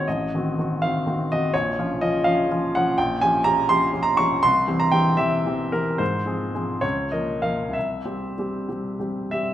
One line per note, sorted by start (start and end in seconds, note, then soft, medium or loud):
0.08 0.31 A1 medium
0.08 0.80 D#5 medium
0.35 0.55 D#3 soft
0.35 0.55 C4 soft
0.35 0.56 F#4 soft
0.58 0.79 D#3 soft
0.58 0.79 C4 soft
0.58 0.80 F#4 soft
0.82 1.03 D#3 soft
0.82 1.03 C4 soft
0.82 1.04 F#4 soft
0.82 1.29 F5 medium
1.07 1.27 D#3 soft
1.07 1.28 C4 soft
1.07 1.28 F#4 soft
1.32 1.52 D#3 soft
1.32 1.53 C4 soft
1.32 1.52 F#4 soft
1.32 1.54 D#5 medium
1.54 1.77 A#1 medium
1.54 2.01 C#5 medium
1.79 1.99 F3 soft
1.79 2.00 C#4 soft
1.79 2.00 F4 soft
2.01 2.23 F3 soft
2.01 2.24 C#4 soft
2.01 2.23 F4 soft
2.01 2.25 D#5 medium
2.24 2.48 F3 soft
2.24 2.47 C#4 soft
2.24 2.48 F4 soft
2.24 2.49 F5 medium
2.51 2.72 F3 soft
2.51 2.72 C#4 soft
2.51 2.72 F4 soft
2.75 2.96 F3 soft
2.75 2.96 C#4 soft
2.75 2.96 F4 soft
2.75 2.98 F#5 medium
2.98 3.21 A#1 medium
2.98 3.21 G5 medium
3.21 3.43 F3 soft
3.21 3.43 C#4 soft
3.21 3.44 G4 soft
3.21 3.46 G#5 medium
3.44 3.67 F3 soft
3.44 3.67 C#4 soft
3.44 3.68 G4 soft
3.44 3.70 A#5 loud
3.69 3.92 F3 soft
3.69 3.92 C#4 soft
3.69 3.92 G4 medium
3.69 4.06 C6 medium
3.93 4.16 F3 soft
3.93 4.16 C#4 soft
3.93 4.16 G4 soft
4.03 4.17 A#5 medium
4.17 4.42 F3 soft
4.17 4.42 C#4 soft
4.17 4.42 G4 soft
4.17 4.43 C#6 medium
4.43 4.69 C2 medium
4.43 4.81 C6 loud
4.67 4.91 E3 soft
4.67 4.91 C4 soft
4.67 4.91 G4 soft
4.80 4.93 A#5 medium
4.92 5.16 E3 soft
4.92 5.16 C4 soft
4.92 5.17 G4 soft
4.92 5.19 G5 medium
5.17 5.43 E3 soft
5.17 5.43 C4 soft
5.17 5.43 G4 medium
5.17 5.72 E5 medium
5.46 5.71 E3 soft
5.46 5.71 C4 soft
5.46 5.71 G4 soft
5.72 5.97 E3 soft
5.72 5.97 C4 soft
5.72 5.97 G4 soft
5.72 5.99 A#4 medium
5.98 6.25 G#2 medium
5.98 6.82 C5 medium
6.25 6.51 F3 soft
6.25 6.51 C4 soft
6.25 6.52 G#4 soft
6.54 6.80 F3 soft
6.54 6.80 C4 soft
6.54 6.80 G#4 soft
6.81 7.11 C#2 soft
6.81 7.12 C#5 medium
7.12 7.40 F3 soft
7.12 7.41 A#3 soft
7.12 7.40 A#4 soft
7.12 7.43 D#5 medium
7.42 7.71 F3 soft
7.42 7.72 A#3 soft
7.42 7.72 A#4 soft
7.42 7.74 F5 medium
7.68 8.02 C2 soft
7.73 9.30 E5 medium
8.05 8.35 G3 soft
8.05 8.34 C4 soft
8.05 8.35 G4 soft
8.38 8.66 G3 soft
8.38 8.67 C4 soft
8.38 8.67 G4 soft
8.69 8.97 G3 soft
8.69 8.97 C4 soft
8.69 8.98 G4 soft
9.00 9.28 G3 soft
9.00 9.28 C4 soft
9.00 9.28 G4 soft
9.31 9.54 G3 soft
9.31 9.54 C4 soft
9.31 9.54 G4 soft
9.31 9.54 E5 medium